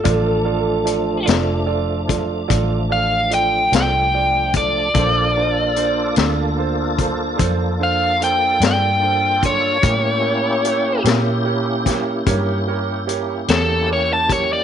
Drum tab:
HH |x-xx-xx-xx-x|x-xx-xx-xx-x|x-xx-xx-xx-x|
SD |---o-----o--|---o-----o--|---o-o---o--|
BD |o----oo----o|o----oo----o|o----oo----o|